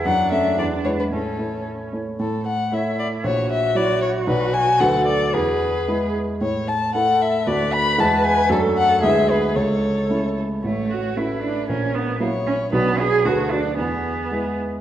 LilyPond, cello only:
\new Staff \with { instrumentName = "Cello" } { \time 2/4 \key a \major \tempo 4 = 114 d'2 | cis'4. r8 | r4 e'4 | fis'2~ |
fis'4 a'4 | gis'4. r8 | r4 a'4 | b'2 |
a'4 gis'4 | a'4. r8 | a8 fis'8 e'8 d'8 | cis'8 b8 ais8 cis'8 |
b8 gis'8 fis'8 d'8 | b4. r8 | }